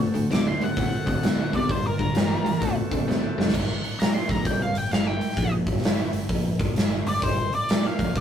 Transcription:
Already playing: D3 A3 C4 F#4 A4
0.14 D2 D3 A3, open hi-hat
0.30 D2 D3 B3 D6, snare, open hi-hat
0.48 C6
0.61 D3 B3 F#5, open hi-hat
0.77 A2 D3 C4, kick, open hi-hat
1.06 D2 D3 C4, kick, open hi-hat
1.23 D2 D3 B3, snare, open hi-hat
1.53 C3 D3 B3 D5, kick, open hi-hat
1.67 G1 G2 D3 A#3 F4 C5 A5, kick, open hi-hat
1.87 A#4
1.99 G1 G2 D3, kick, open hi-hat
2.14 G1 G2 E3, snare, open hi-hat
2.45 C#2 G2 E3, open hi-hat
2.61 D2 D3 A3 C4 F#4 A4, kick, open hi-hat
2.91 D2 D3 C4, kick, open hi-hat
3.08 D2 D3 B3, snare
3.38 F#1 D3 B3, snare
3.48 snare
3.54 G1, kick, crash
3.84 open hi-hat
3.99 A#5, snare, open hi-hat
4.15 C6
4.29 A#1 A#5, kick, open hi-hat
4.45 C2 G5, kick, open hi-hat
4.62 F5
4.74 G1, open hi-hat
4.78 G5
4.91 G1 F5, snare, open hi-hat
5.07 G5
5.21 open hi-hat
5.31 snare
5.37 A#1, kick, open hi-hat
5.67 G1, kick, open hi-hat
5.77 snare
5.82 G1, snare, open hi-hat
6.12 G1, open hi-hat
6.29 A#1, kick, open hi-hat
6.59 G1, kick, open hi-hat
6.76 snare, open hi-hat
7.06 G1 D5, open hi-hat
7.16 snare
7.22 G1 C5, kick, open hi-hat
7.53 D5, open hi-hat
7.69 snare, open hi-hat
7.87 F5
7.99 A#1, kick, open hi-hat
8.15 C2, kick, open hi-hat

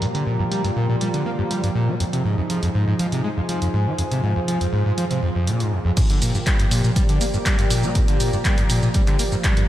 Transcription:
Already playing: F3 A#3 G4 D5 G5 A#5
0.02 G2 F4, closed hi-hat
0.15 D3, closed hi-hat
0.27 A#2
0.39 G2
0.51 G3, closed hi-hat
0.64 G2, closed hi-hat
0.76 A#2
0.89 A#2
1.01 G3, closed hi-hat
1.14 D3, closed hi-hat
1.26 A#3
1.39 G2
1.51 G3, closed hi-hat
1.63 G2, closed hi-hat
1.75 A#2
1.88 G3
2.00 F2 D#4 F4 G#4, closed hi-hat
2.10 C3 C5, closed hi-hat
2.25 G#2
2.38 F2
2.50 F3 G#5, closed hi-hat
2.63 F2, closed hi-hat
2.75 G#2
2.87 G#2
2.99 F3, closed hi-hat
3.12 C3, closed hi-hat
3.24 G#3
3.37 F2
3.49 F3, closed hi-hat
3.62 F2, closed hi-hat
3.74 G#2
3.87 F3
3.98 F2 F4, closed hi-hat
4.11 C3, closed hi-hat
4.23 G#2
4.36 F2
4.48 F3, closed hi-hat
4.61 F2, closed hi-hat
4.73 G#2
4.86 G#2
4.98 F3, closed hi-hat
5.11 C3, closed hi-hat
5.22 F2
5.35 F2
5.47 A#2, closed hi-hat
5.60 G#2, closed hi-hat
5.72 F2
5.85 F2
5.97 G2 F3 A#3 G4, kick, closed hi-hat, crash, shaker
6.10 D3, closed hi-hat, shaker
6.15 D5
6.22 A#2, open hi-hat, shaker
6.35 G2, shaker
6.42 G5
6.47 G3, kick, clap, closed hi-hat, shaker
6.59 G2, closed hi-hat, shaker
6.70 A#2 A#5, open hi-hat, shaker
6.84 A#2, shaker
6.96 G3, kick, closed hi-hat, shaker
7.09 D3, closed hi-hat, shaker
7.21 A#3, open hi-hat, shaker
7.34 G2, shaker
7.46 G3, kick, clap, closed hi-hat, shaker
7.59 G2, closed hi-hat, shaker
7.70 A#2, open hi-hat, shaker
7.83 G3, shaker
7.95 G2, kick, closed hi-hat, shaker
8.08 D3, closed hi-hat, shaker
8.20 A#2, open hi-hat, shaker
8.33 G2, shaker
8.45 G3, kick, clap, closed hi-hat, shaker
8.58 G2, closed hi-hat, shaker
8.70 A#2, open hi-hat, shaker
8.82 A#2, shaker
8.94 G3, kick, closed hi-hat, shaker
9.07 D3, clap, closed hi-hat, shaker
9.19 A#3, open hi-hat, shaker
9.32 G2, shaker
9.44 G3, kick, clap, closed hi-hat, shaker
9.57 G2, closed hi-hat, shaker

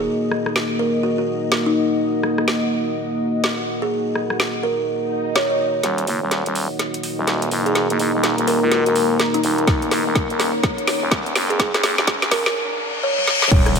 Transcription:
Already playing: A#3 D#4 F#4 A#4 D#5 F#5 A#5
0.00 G#4
0.32 cross-stick
0.46 cross-stick
0.56 snare
0.79 A#4
1.03 F#4
1.18 F#4
1.52 snare
1.66 D#4
2.23 cross-stick
2.38 cross-stick
2.48 snare
3.44 snare
3.82 G#4
4.15 cross-stick
4.30 cross-stick
4.40 snare
4.63 A#4
4.87 swell
5.35 C#5, snare
5.50 C#5
5.83 D#1 A#3 D#4 F#4 D#5, snare, closed hi-hat, riser
5.98 A#4, closed hi-hat
6.07 F#1, open hi-hat
6.22 D#1
6.31 snare, closed hi-hat
6.46 D#1, closed hi-hat
6.55 open hi-hat
6.68 A#5
6.79 snare, closed hi-hat
6.94 closed hi-hat
7.03 open hi-hat
7.18 D#1
7.27 snare, closed hi-hat
7.42 closed hi-hat
7.51 F#1, open hi-hat
7.66 G#4, closed hi-hat
7.75 snare, closed hi-hat
7.90 F#1, closed hi-hat
7.99 F#1, open hi-hat
8.14 D#1
8.23 snare, closed hi-hat
8.38 D#1, closed hi-hat
8.47 A#4, open hi-hat
8.62 C#2
8.71 F#4, snare, closed hi-hat
8.86 E1 F#4, closed hi-hat
8.96 open hi-hat
9.20 snare, closed hi-hat
9.34 D#4, closed hi-hat
9.43 D#1, open hi-hat
9.58 closed hi-hat
9.67 D#1 C#5, kick, snare, closed hi-hat
9.82 closed hi-hat
9.91 F#1, snare, open hi-hat
10.06 D#1
10.15 kick, snare, closed hi-hat
10.30 D#1, closed hi-hat
10.40 snare, open hi-hat
10.63 kick, snare, closed hi-hat
10.78 closed hi-hat
10.87 snare, open hi-hat
11.02 D#1
11.11 kick, snare, closed hi-hat
11.26 closed hi-hat
11.35 F#1, snare, open hi-hat
11.50 G#4, closed hi-hat
11.59 kick, snare, closed hi-hat
11.74 F#1, snare, closed hi-hat
11.83 F#1, snare, open hi-hat
11.98 D#1, snare
12.07 kick, snare, closed hi-hat
12.22 D#1, snare, closed hi-hat
12.31 A#4, kick, snare, open hi-hat
12.46 snare
12.55 reverse cymbal
13.03 C#5
13.18 C#5, high tom
13.27 snare
13.42 snare
13.51 D#1, kick, closed hi-hat, crash, impact
13.66 cross-stick, closed hi-hat
13.76 open hi-hat

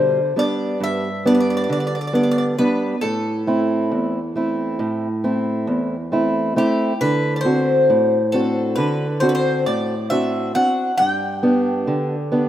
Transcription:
Already playing: B2 D3 G3 D4 C5
0.36 G3 B3 D4 D5
0.80 G2 E5
1.25 G3 B3 D4 D5
1.35 D5
1.40 D5
1.50 D5
1.57 D5
1.64 D5
1.69 D3 D5
1.80 D5
1.87 D5
1.95 D5
2.01 D5
2.07 D5
2.13 G3 B3 D4 D5
2.23 D5
2.31 D5
2.38 D5
2.59 G3 B3 D4 B4
3.01 A2 A4
3.47 A3 C4 E4
3.91 E2
4.36 A3 C4 E4
4.79 A2
5.24 A3 C4 E4
5.67 E2
6.12 A3 C4 E4
6.56 A3 C4 E4 G4
7.01 D3 B4
7.36 D5
7.41 C5
7.45 C4 D4 F#4
7.90 A2
8.32 C4 D4 F#4 A4
8.76 D3 B4
9.20 C4 D4 F#4 C5
9.29 B4
9.35 C5
9.66 A2 D5
10.10 C4 D4 F#4 E5
10.55 C4 D4 F#4 F#5
10.97 G2 G5
11.43 B3 D4 G4
11.87 D3
12.32 B3 D4 G4

